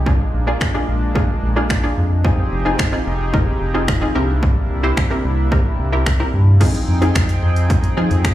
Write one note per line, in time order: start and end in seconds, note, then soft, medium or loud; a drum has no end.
0.00 0.25 C2 medium
0.06 0.34 A#3 medium
0.06 0.34 D4 medium
0.06 0.34 F4 medium
0.06 0.34 G#4 medium
0.06 kick loud
0.34 0.57 A#1 medium
0.47 0.66 A#3 medium
0.47 0.66 D4 medium
0.47 0.66 F4 medium
0.47 0.66 G#4 medium
0.61 finger snap loud
0.61 kick loud
0.74 1.02 A#3 medium
0.74 1.03 D4 medium
0.74 1.03 F4 medium
0.74 1.03 G#4 medium
0.88 1.34 A#1 medium
1.15 1.43 A#3 medium
1.15 1.43 D4 medium
1.15 1.43 F4 medium
1.15 1.44 G#4 medium
1.15 kick loud
1.43 1.89 A#1 loud
1.56 1.75 A#3 medium
1.56 1.75 D4 medium
1.56 1.75 F4 medium
1.56 1.75 G#4 medium
1.70 finger snap loud
1.70 kick medium
1.83 2.11 A#3 medium
1.83 2.12 D4 medium
1.83 2.12 F4 medium
1.83 2.12 G#4 medium
1.97 2.43 F2 medium
2.24 4.14 F3 medium
2.24 2.52 C4 medium
2.24 4.14 C4 medium
2.24 2.53 D#4 medium
2.24 4.14 D#4 medium
2.24 2.53 F4 medium
2.24 4.14 G4 medium
2.24 4.14 G#4 medium
2.24 2.53 G#4 medium
2.24 kick loud
2.52 2.75 F1 medium
2.65 2.84 C4 medium
2.65 2.84 D#4 medium
2.65 2.84 F4 medium
2.65 2.84 G#4 loud
2.79 finger snap loud
2.79 kick loud
2.92 3.21 C4 medium
2.92 3.21 D#4 medium
2.92 3.21 F4 medium
2.92 3.21 G#4 medium
3.06 3.52 F1 medium
3.33 3.61 C4 medium
3.33 3.62 D#4 medium
3.33 3.62 F4 medium
3.33 3.62 A#4 medium
3.33 kick loud
3.61 4.07 F1 loud
3.74 3.93 C4 medium
3.74 3.93 D#4 medium
3.74 3.93 F4 medium
3.74 3.93 G#4 medium
3.88 finger snap loud
3.88 kick medium
4.01 4.14 C4 medium
4.01 4.15 D#4 medium
4.01 4.15 F4 medium
4.01 4.16 G#4 loud
4.15 4.61 C2 medium
4.15 6.59 C3 medium
4.15 6.58 G3 medium
4.15 6.58 A#3 medium
4.15 4.70 C4 medium
4.15 6.58 D4 medium
4.15 4.70 E4 medium
4.15 6.58 E4 medium
4.15 4.70 G4 medium
4.15 4.70 A#4 loud
4.43 kick loud
4.70 4.93 C2 medium
4.83 5.02 C4 medium
4.83 5.02 E4 medium
4.83 5.02 G4 medium
4.83 5.02 C5 medium
4.97 finger snap loud
4.97 kick loud
5.10 5.39 C4 medium
5.10 5.39 E4 medium
5.10 5.39 G4 medium
5.10 5.39 A#4 loud
5.25 5.70 C2 medium
5.51 5.80 C4 medium
5.51 5.80 E4 medium
5.51 5.80 G4 medium
5.51 5.80 A#4 medium
5.51 kick loud
5.79 6.25 C2 loud
5.92 6.11 C4 medium
5.92 6.11 E4 medium
5.92 6.11 G4 medium
5.92 6.11 A#4 medium
6.06 finger snap loud
6.06 kick medium
6.20 6.48 C4 medium
6.20 6.48 E4 medium
6.20 6.48 G4 medium
6.20 6.48 A#4 medium
6.34 6.57 G2 medium
6.60 8.34 F3 medium
6.60 6.89 C4 medium
6.60 8.34 C4 medium
6.60 6.89 D#4 medium
6.60 8.34 D#4 medium
6.60 6.89 F4 medium
6.60 6.89 G#4 medium
6.60 8.34 G#4 medium
6.60 8.34 G5 medium
6.60 kick loud
6.60 closed hi-hat medium
6.60 crash medium
6.75 closed hi-hat soft
6.88 7.11 F2 medium
7.01 7.67 C4 medium
7.01 7.67 D#4 medium
7.01 7.67 F4 medium
7.01 7.67 G#4 loud
7.01 closed hi-hat medium
7.15 7.38 F2 medium
7.15 finger snap loud
7.15 kick loud
7.15 closed hi-hat medium
7.29 closed hi-hat medium
7.43 7.89 F2 medium
7.56 closed hi-hat medium
7.70 kick loud
7.70 closed hi-hat medium
7.84 closed hi-hat soft
7.97 8.09 F3 medium
7.97 8.34 C4 medium
7.97 8.34 D#4 medium
7.97 8.34 F4 medium
7.97 8.34 G#4 loud
8.11 8.34 F2 medium
8.11 closed hi-hat medium
8.25 finger snap loud
8.25 kick medium
8.25 closed hi-hat medium